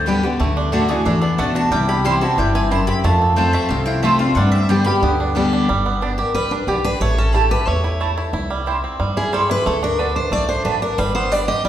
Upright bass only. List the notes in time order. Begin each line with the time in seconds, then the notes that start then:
Already playing: D2
0.39 D2
1.05 E2
1.38 D2
1.71 C2
2.37 G1
3.04 F2
3.70 C2
4.35 G2
5.02 D2
5.69 G1
6.34 C2
6.67 B1
7.00 A1
7.67 E2
8.33 C2
9.00 G2
9.66 D2
10.31 B1
10.65 A1
10.98 G1
11.64 D2